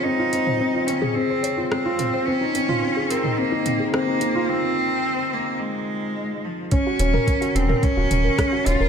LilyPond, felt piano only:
\new Staff \with { instrumentName = "Felt piano" } { \time 4/4 \key ees \dorian \tempo 4 = 108 c'16 f'16 c'16 c''16 c'16 f'16 c'16 aes'16 c'16 c''16 des''16 f'16 c'16 f'16 c'16 c''16 | c'16 ees'16 c'16 f'16 c'16 aes'16 bes'16 ees'16 c'16 ees'16 c'16 aes'16 c'16 ees'16 c'16 f'16 | r1 | des'16 ges'16 des'16 bes'16 des'16 ges'16 des'16 bes'16 des'16 ges'16 des'16 bes'16 des'16 ges'16 des'16 bes'16 | }